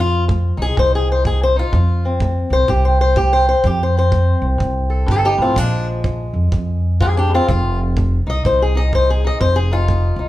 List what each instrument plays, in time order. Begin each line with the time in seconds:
Already playing: steel-string acoustic guitar F2 C4, upright bass F2
0.00 steel-string acoustic guitar F4
0.28 steel-string acoustic guitar A3, kick
0.57 upright bass C2, steel-string acoustic guitar D#4
0.62 steel-string acoustic guitar G#4
0.77 upright bass C2, steel-string acoustic guitar F2 C5, kick
0.95 steel-string acoustic guitar G#4
1.12 steel-string acoustic guitar C5
1.25 steel-string acoustic guitar A3 G#4, kick
1.43 steel-string acoustic guitar C5
1.56 steel-string acoustic guitar D#4 F4
1.73 steel-string acoustic guitar F2, upright bass F2, kick
2.05 steel-string acoustic guitar C4
2.20 steel-string acoustic guitar A3, kick
2.50 upright bass C2, steel-string acoustic guitar C5
2.68 upright bass C2, steel-string acoustic guitar F2 G4, kick
2.85 steel-string acoustic guitar C5
3.01 steel-string acoustic guitar C5
3.16 steel-string acoustic guitar A3 G4, kick
3.33 steel-string acoustic guitar C5
3.49 steel-string acoustic guitar C5
3.64 upright bass F2, steel-string acoustic guitar F2 G4, kick
3.83 steel-string acoustic guitar C5
3.97 steel-string acoustic guitar C4 C5
4.12 steel-string acoustic guitar A3, kick
4.42 upright bass C2
4.58 upright bass C2, steel-string acoustic guitar F2, kick
4.90 steel-string acoustic guitar A4
5.06 upright bass G1, steel-string acoustic guitar G2, kick
5.11 steel-string acoustic guitar F4 A4
5.25 steel-string acoustic guitar D#4 G4
5.38 upright bass A1, steel-string acoustic guitar A2 C4
5.42 steel-string acoustic guitar F4
5.56 upright bass A#1, steel-string acoustic guitar A#2 F3 G#3 D4, kick
6.04 steel-string acoustic guitar F3, kick
6.34 upright bass F2
6.52 steel-string acoustic guitar F2, upright bass F2, kick
7.01 steel-string acoustic guitar G#2 F4 G#4, kick
7.17 steel-string acoustic guitar D4 G4
7.30 steel-string acoustic guitar G2
7.34 steel-string acoustic guitar C4 F4
7.48 upright bass F1, steel-string acoustic guitar F2 F4, kick
7.97 steel-string acoustic guitar A3, kick
8.27 upright bass C2, steel-string acoustic guitar D#4 D#5
8.45 upright bass C2, steel-string acoustic guitar F2 C5, kick
8.62 steel-string acoustic guitar G#4
8.75 steel-string acoustic guitar D#4 D#5
8.93 steel-string acoustic guitar A3 C5, kick
9.10 steel-string acoustic guitar G#4
9.24 steel-string acoustic guitar D#4 D#5
9.40 upright bass F1, steel-string acoustic guitar F2 C5, kick
9.56 steel-string acoustic guitar G#4
9.72 steel-string acoustic guitar D#4 F4
9.88 steel-string acoustic guitar A3, kick
10.16 upright bass C2, steel-string acoustic guitar D#4